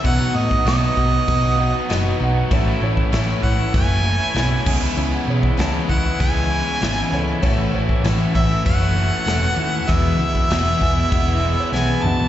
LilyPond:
<<
  \new Staff \with { instrumentName = "Harmonica" } { \time 4/4 \key a \lydian \tempo 4 = 98 fis''8 dis''8 dis''2~ dis''8 r8 | r4. fis''8 gis''2 | r4. fis''8 gis''2 | r4. e''8 fis''2 |
e''2. gis''8 a''8 | }
  \new Staff \with { instrumentName = "Upright piano" } { \time 4/4 \key a \lydian r2 r8 <dis'' f'' fis''>8 <dis'' fis''>8 <dis'' fis''>8 | <cis'' e''>8 cis''8. r2 r16 gis''16 b''16 | gis''16 fis''16 cis''8 <cis'' a''>8 r2 <a' c'' cis''>8 | <a' cis''>8 <c'' cis''>8. r2 r8. |
r4. gis''8 fis''16 e''16 b'16 cis''16 b'8 <d' fis'>8 | }
  \new Staff \with { instrumentName = "Overdriven electric guitar" } { \time 4/4 \key a \lydian <b, fis b dis' fis'>8 <fis b dis' fis'>16 <b dis' fis'>16 <b, fis b dis' fis'>16 <b dis' fis'>16 <fis b dis' fis'>16 <b dis' fis'>8 <b dis' fis'>16 <fis b dis' fis'>16 <b dis' fis'>16 <b, fis b dis' fis'>8 <fis b dis' fis'>8 | <a, e a cis' e'>8 <e a cis' e'>16 <a cis' e'>16 <a, e a cis' e'>16 <a cis' e'>16 <e a cis' e'>16 <a cis' e'>8 <a cis' e'>16 <e a cis' e'>16 <a cis' e'>16 <a, e a cis' e'>8 <cis e gis cis' e'>8 | <cis e gis cis' e'>8 <e gis cis' e'>16 <gis cis' e'>16 <cis e gis cis' e'>16 <gis cis' e'>16 <e gis cis' e'>16 <gis cis' e'>8 <gis cis' e'>16 <e gis cis' e'>16 <gis cis' e'>16 <cis e gis cis' e'>8 <e gis cis' e'>8 | <a, e a cis' e'>8 <e a cis' e'>16 <a cis' e'>16 <a, e a cis' e'>16 <a cis' e'>16 <e a cis' e'>16 <a cis' e'>8 <a cis' e'>16 <e a cis' e'>16 <a cis' e'>16 <a, e a cis' e'>8 <e a cis' e'>8 |
<e, b, e gis b e'>8 <e gis b e'>16 <e gis b e'>16 <e, b, e gis b e'>16 <e gis b e'>16 <e gis b e'>16 <e gis b e'>8 <e gis b e'>16 <e gis b e'>16 <e gis b e'>16 <e, b, e gis b e'>8 <e gis b e'>8 | }
  \new Staff \with { instrumentName = "Twelve-string acoustic guitar" } { \time 4/4 \key a \lydian <b, fis b dis' fis'>8 <b dis' fis'>8 <b, fis b dis' fis'>8 <b dis' fis'>8 <fis b dis' fis'>8 <b dis' fis'>8 <b, fis b dis' fis'>4 | <a, fis a cis' e'>8 <a cis' e'>8 <a, fis a cis' e'>8 <a cis' e'>8 <fis a cis' e'>8 <a cis' e'>8 <a, fis a cis' e'>8 <cis e gis b e'>8~ | <cis e gis b e'>8 <gis b e'>8 <cis e gis b e'>8 <gis b e'>8 <e gis b e'>8 <gis b e'>8 <cis e b e'>4 | <a, e a cis' fis'>8 <a cis' fis'>8 <a, e a cis' fis'>8 <a cis' fis'>8 <e a cis' fis'>8 <a cis' fis'>8 <a, a cis' fis'>4 |
<e, b, e gis b e'>8 <e gis b e'>8 <e, b, e gis b e'>8 <e gis b e'>8 <e gis b e'>8 <e gis b e'>8 <e, b, e gis b e'>4 | }
  \new Staff \with { instrumentName = "Fingered electric bass" } { \clef bass \time 4/4 \key a \lydian b,,8 a,8 b,,8 b,,8 b,,4 fis,,8 b,,8 | a,,8 a,,8 a,,8 a,,8 fis,,4 b,,8 cis,8 | cis,8 b,8 cis,8 cis,8 cis,4 gis,,8 cis,8 | a,,8 a,,8 a,,8 a,,8 fis,,4 e,,8 dis,8 |
e,,8 cis,8 e,,8 e,,8 e,,4 b,,8 cis,8 | }
  \new DrumStaff \with { instrumentName = "Drums" } \drummode { \time 4/4 <cymc bd>8. bd16 <cymc sn>8 bd8 <cymc bd>4 <cymc sn>4 | <cymc bd>8. bd16 <cymc sn>8 bd8 <cymc bd>4 <cymc sn>8 <cymc bd>8 | cymc8. bd16 <cymc sn>8 bd8 <cymc bd>4 <cymc sn>4 | <cymc bd>8. bd16 <cymc sn>8 bd8 <cymc bd>4 <cymc sn>4 |
<cymc bd>8. bd16 <cymc sn>8 bd8 <cymc bd>4 sn16 tommh16 toml16 tomfh16 | }
>>